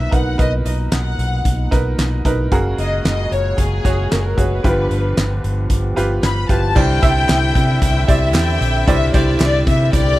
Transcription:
Already playing: A#2 B2 D#4 A#4 B4 E5
0.11 B1 D#4 A#4 B4 F#5, kick, closed hi-hat
0.38 B1 D#4 A#4 B4 D#5, kick, closed hi-hat
0.65 B1 D#5, closed hi-hat
0.92 B1 F#5, snare, clap, closed hi-hat
1.19 B1, closed hi-hat
1.45 B1, kick, closed hi-hat
1.71 B1 D#4 A#4 B4, kick, snare, closed hi-hat
1.98 B1, snare, clap, closed hi-hat
2.25 B1 D#4 A#4 B4, kick, closed hi-hat
2.51 F#1 A#2 C#3 G#3 F#4 G#4 A#4, kick, closed hi-hat
2.78 F#1 D#5, closed hi-hat
3.05 F#1 D#5, snare, clap, closed hi-hat
3.32 F#1 C#5, closed hi-hat
3.58 F#1 G#4, kick, closed hi-hat
3.84 F#1 F#4 G#4 C#5, kick, snare, closed hi-hat
4.12 F#1 A#4, snare, clap, closed hi-hat
4.19 G#4
4.26 A#4
4.37 F#1 F#4 G#4 B4 C#5, kick, closed hi-hat
4.63 G1 G2 D3 F3 B3 F4 G4 B4, kick, closed hi-hat
4.91 G1, closed hi-hat
5.17 G1, snare, clap, closed hi-hat
5.44 G1, closed hi-hat
5.70 G1, kick, closed hi-hat
5.96 G1 F4 G4 B4, snare, closed hi-hat
6.23 G1 B5, snare, clap, closed hi-hat
6.49 G1 F4 G4 B4 A5, kick, closed hi-hat
6.75 C2 G2 D3 C4 E4 G4 C5 D5 E5 G5, kick, crash
7.02 C2 E4 G4 C5 E5, kick, closed hi-hat
7.29 C2, snare, clap, closed hi-hat
7.55 C3, kick, closed hi-hat
7.82 C2 G5, kick, closed hi-hat
8.08 C2 E4 G4 C5 D5 E5, kick, closed hi-hat
8.34 E2, snare, clap, closed hi-hat
8.36 G5, clap
8.61 A#1, closed hi-hat
8.87 C2 G2 E4 G4 C5 D5 E5, kick, closed hi-hat
9.14 C2 E4 G4 C5 D5, kick, closed hi-hat
9.40 C2 D5, snare, clap, closed hi-hat
9.42 clap
9.67 C3 E5, kick, closed hi-hat
9.93 C2 G4 D5 G5, kick, closed hi-hat

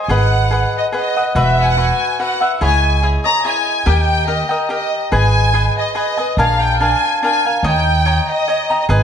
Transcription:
0.03 G#5
0.08 G#1 G#4 B4 D#5 F#5
0.51 G#4 B4 D#5 F#5
0.77 D#5
0.92 G#4 B4 D#5 F#5
1.16 B4 D#5 F#5
1.35 E1 F#4 B4 E5 F#5
1.39 E5
1.61 F#5 G#5
1.71 F#5
1.77 F#4 B4 E5 F#5 G#5
2.20 F#4 B4 E5 F#5
2.40 B4 E5 F#5
2.61 C#2 E4 G#4 C#5 D#5 G#5
3.02 E4 G#4 C#5 D#5
3.24 G#4 C#5 D#5 A#5
3.44 E4 G#4 C#5 D#5 G#5
3.86 D#2 G4 A#4 D#5 G5
3.90 G5 G#5
4.03 G5
4.27 G4 A#4 D#5 G5
4.49 A#4 D#5 G5
4.69 G4 A#4 D#5 G5
5.12 G#1 G#4 B4 D#5 G#5
5.54 G#4 B4 D#5 G#5
5.79 D#5
5.95 G#4 B4 D#5 G#5
6.17 B4 D#5 G#5
6.37 A#1 D4 A#4 F5 G#5
6.41 F5
6.62 G5
6.80 D4 A#4 F5 G#5
7.23 D4 A#4 F5 G#5
7.45 A#4 F5 G#5
7.63 D#2 C#5 D#5 G5 A#5
7.67 G5
8.06 C#5 D#5 G5 A#5
8.31 D#5
8.48 C#5 D#5 G5 A#5
8.70 D#5 G5 A#5
8.81 D#5
8.89 G#1 G#4 B4 D#5 G#5
8.93 G#5

